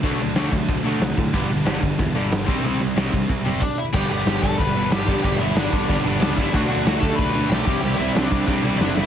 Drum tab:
CC |--------|--------|------x-|x-x-x-x-|
HH |oooooooo|oooooooo|oooooo--|--------|
SD |--o---o-|--o---o-|--o-----|--o---o-|
BD |o--oo--o|o--oo--o|---oo-o-|o--oo--o|

CC |x-x-x-x-|x-x-x-xx|x-x-----|
HH |--------|--------|--------|
SD |--o---o-|--o---o-|--o-o-oo|
BD |o--oo--o|o--oo--o|---oo---|